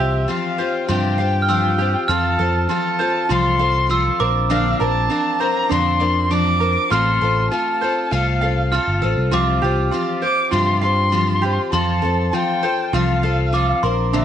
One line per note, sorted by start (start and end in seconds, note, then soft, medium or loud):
0.00 0.25 C2 medium
0.00 0.28 C4 soft
0.00 0.27 F4 medium
0.00 0.28 F4 soft
0.00 0.28 G4 medium
0.00 1.19 G4 medium
0.00 0.31 E5 medium
0.00 1.48 C6 medium
0.28 0.59 F3 medium
0.28 0.59 C4 medium
0.28 0.87 F4 medium
0.28 0.59 F4 medium
0.28 0.58 G4 medium
0.28 0.89 F5 medium
0.58 0.88 C4 soft
0.58 0.89 F4 medium
0.58 0.89 G4 medium
0.58 1.79 C5 medium
0.88 1.94 G2 medium
0.88 1.19 C3 medium
0.88 1.19 F3 medium
0.88 1.19 C4 medium
0.88 1.47 F4 medium
0.88 1.19 F4 medium
0.88 1.18 G4 medium
0.88 2.06 G5 medium
1.18 1.48 C4 soft
1.18 1.49 F4 soft
1.18 1.49 G4 medium
1.18 2.09 F5 medium
1.42 1.49 F6 medium
1.48 1.79 F3 medium
1.48 1.80 C4 medium
1.48 2.08 F4 medium
1.48 1.79 F4 medium
1.48 1.78 G4 medium
1.48 2.11 E6 medium
1.78 2.09 C4 medium
1.78 2.09 F4 medium
1.78 2.09 G4 medium
2.08 2.36 F2 loud
2.08 2.40 F3 medium
2.08 2.40 C4 medium
2.08 2.68 F4 medium
2.08 2.39 F4 medium
2.08 2.38 A4 medium
2.08 2.66 A5 medium
2.08 3.95 F6 loud
2.39 2.66 F2 medium
2.39 2.69 C4 soft
2.39 2.70 F4 medium
2.39 3.59 A4 medium
2.39 2.70 A4 medium
2.69 3.00 F3 medium
2.69 3.00 C4 medium
2.69 3.28 F4 medium
2.69 3.00 F4 medium
2.69 2.99 A4 medium
2.69 3.33 A5 loud
2.99 3.30 C4 soft
2.99 3.30 F4 medium
2.99 3.30 A4 medium
2.99 4.20 C5 medium
3.29 4.09 C2 medium
3.29 3.60 F3 medium
3.29 3.61 C4 medium
3.29 3.88 F4 medium
3.29 3.60 F4 medium
3.29 3.58 A4 medium
3.29 4.21 C6 loud
3.59 3.89 C4 soft
3.59 3.90 F4 medium
3.59 3.90 A4 medium
3.59 4.19 F5 medium
3.89 4.20 F3 medium
3.89 4.20 C4 medium
3.89 4.20 F4 medium
3.89 4.19 A4 medium
3.89 4.22 E6 medium
4.20 4.73 A#1 medium
4.20 4.49 F3 soft
4.20 4.50 C4 soft
4.20 4.50 D4 medium
4.20 4.79 A#4 medium
4.20 4.50 A#4 medium
4.20 6.99 D6 medium
4.50 4.80 A#2 medium
4.50 4.81 D3 medium
4.50 4.81 F3 medium
4.50 4.81 C4 medium
4.50 5.09 D4 medium
4.50 4.80 D4 loud
4.50 4.80 A#4 medium
4.50 4.79 F5 medium
4.80 5.07 A#1 medium
4.80 5.08 F3 soft
4.80 5.09 C4 soft
4.80 5.10 D4 medium
4.80 6.00 A#4 medium
4.80 5.10 A#4 medium
4.80 5.42 A5 loud
5.10 5.40 F3 medium
5.10 5.41 C4 medium
5.10 5.68 D4 medium
5.10 5.40 D4 medium
5.10 5.39 A#4 medium
5.40 5.70 F3 medium
5.40 5.71 C4 soft
5.40 5.71 D4 medium
5.40 5.71 A#4 medium
5.40 6.60 C5 medium
5.40 5.72 A#5 loud
5.69 6.76 F2 medium
5.69 6.01 A#2 medium
5.69 6.01 D3 medium
5.69 6.01 F3 medium
5.69 6.01 C4 medium
5.69 6.29 D4 medium
5.69 6.00 D4 medium
5.69 5.99 A#4 medium
5.69 6.33 C6 loud
6.00 6.30 F3 soft
6.00 6.30 C4 soft
6.00 6.31 D4 soft
6.00 6.31 A#4 medium
6.00 6.91 D5 medium
6.30 6.61 F3 medium
6.30 6.62 C4 medium
6.30 6.91 D4 medium
6.30 6.61 D4 medium
6.30 6.60 A#4 medium
6.30 6.93 D6 loud
6.60 6.91 F3 soft
6.60 6.91 C4 soft
6.60 6.92 D4 soft
6.60 6.91 A#4 medium
6.60 6.91 A#4 soft
6.90 7.18 A1 medium
6.90 7.22 A3 medium
6.90 7.22 C4 medium
6.90 7.50 F4 medium
6.90 7.22 F4 medium
6.90 7.21 A4 medium
6.90 7.50 C6 loud
6.90 8.71 F6 loud
7.21 7.48 A1 loud
7.21 7.51 C4 soft
7.21 7.52 F4 medium
7.21 8.41 A4 medium
7.21 7.52 A4 medium
7.51 7.82 A3 medium
7.51 7.82 C4 medium
7.51 8.10 F4 medium
7.51 7.82 F4 medium
7.51 7.81 A4 medium
7.51 8.13 A5 medium
7.81 8.11 C4 medium
7.81 8.12 F4 soft
7.81 8.12 A4 medium
7.81 9.02 C5 medium
8.11 8.78 C2 medium
8.11 8.42 A3 medium
8.11 8.42 C4 medium
8.11 8.71 F4 medium
8.11 8.42 F4 medium
8.11 8.41 A4 medium
8.11 9.02 F5 medium
8.41 8.72 C4 soft
8.41 8.73 F4 soft
8.41 8.72 A4 medium
8.41 9.32 F5 medium
8.72 9.02 A3 medium
8.72 9.03 C4 medium
8.72 9.30 F4 medium
8.72 9.02 F4 medium
8.72 9.01 A4 medium
8.72 9.34 F6 medium
8.88 9.01 G1 medium
9.02 9.16 A1 medium
9.02 9.32 C4 medium
9.02 9.32 F4 medium
9.02 9.32 A4 medium
9.18 9.31 C2 medium
9.31 9.59 C2 loud
9.31 9.62 C3 medium
9.31 9.63 F3 medium
9.31 9.63 C4 loud
9.31 9.90 F4 medium
9.31 9.63 F4 medium
9.31 9.62 G4 medium
9.31 11.81 D6 medium
9.62 9.89 C2 medium
9.62 9.92 C4 medium
9.62 9.93 F4 medium
9.62 10.83 G4 medium
9.62 9.93 G4 medium
9.91 10.23 F3 medium
9.91 10.23 C4 medium
9.91 10.50 F4 medium
9.91 10.22 F4 medium
9.91 10.21 G4 medium
10.22 10.52 C4 soft
10.22 10.52 F4 soft
10.22 10.52 G4 medium
10.22 11.43 C5 medium
10.22 10.51 D6 loud
10.51 11.57 G2 loud
10.51 10.83 C3 medium
10.51 10.83 F3 medium
10.51 10.83 C4 medium
10.51 11.11 F4 medium
10.51 10.82 F4 medium
10.51 10.81 G4 medium
10.51 10.81 C6 loud
10.81 11.12 C4 soft
10.81 11.13 F4 soft
10.81 11.13 G4 soft
10.81 11.72 F5 medium
10.81 11.69 C6 loud
11.12 11.43 F3 medium
11.12 11.43 C4 medium
11.12 11.71 F4 medium
11.12 11.43 F4 medium
11.12 11.42 G4 medium
11.42 11.72 C4 soft
11.42 11.73 F4 soft
11.42 11.72 G4 medium
11.42 11.73 G4 medium
11.72 11.99 F2 medium
11.72 12.03 F3 medium
11.72 12.03 C4 medium
11.72 12.32 F4 medium
11.72 12.03 F4 medium
11.72 12.02 A4 medium
11.72 12.35 A5 medium
11.72 13.59 C6 medium
12.02 12.30 F2 medium
12.02 12.33 C4 soft
12.02 12.33 F4 medium
12.02 13.23 A4 medium
12.02 12.33 A4 soft
12.33 12.63 F3 medium
12.33 12.64 C4 medium
12.33 12.92 F4 medium
12.33 12.63 F4 medium
12.33 12.62 A4 medium
12.33 12.96 G5 medium
12.63 12.93 C4 medium
12.63 12.94 F4 medium
12.63 12.93 A4 medium
12.63 13.84 C5 medium
12.93 13.72 C2 loud
12.93 13.24 F3 medium
12.93 13.24 C4 medium
12.93 13.51 F4 medium
12.93 13.24 F4 medium
12.93 13.22 A4 medium
12.93 13.84 F5 medium
13.23 13.53 C4 soft
13.23 13.54 F4 medium
13.23 13.54 A4 medium
13.23 13.83 F5 medium
13.53 13.83 F3 medium
13.53 13.84 C4 medium
13.53 13.83 F4 medium
13.53 13.84 F4 medium
13.53 13.83 A4 medium
13.53 13.82 D6 medium
13.83 14.25 A#1 medium
13.83 14.13 F3 medium
13.83 14.13 C4 soft
13.83 14.13 D4 medium
13.83 14.25 A#4 medium
13.83 14.14 A#4 medium
13.83 14.25 C6 medium
14.13 14.25 A#2 medium
14.13 14.25 D3 medium
14.13 14.25 F3 medium
14.13 14.25 C4 medium
14.13 14.25 D4 medium
14.13 14.25 A#4 medium
14.13 14.25 E5 medium